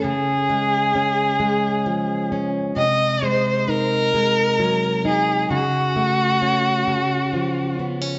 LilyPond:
<<
  \new Staff \with { instrumentName = "Violin" } { \time 6/8 \key cis \phrygian \tempo 4. = 44 gis'2~ gis'8 r8 | dis''8 bis'8 ais'4. gis'8 | fis'2~ fis'8 r8 | }
  \new Staff \with { instrumentName = "Steel-string acoustic guitar" } { \clef bass \time 6/8 \key cis \phrygian cis8 gis8 cis'8 gis8 eis8 cis'8 | bis,8 gis8 dis'8 gis8 fis8 dis'8 | cis8 a8 cis'8 cis8 eis8 b16 cis'16 | }
>>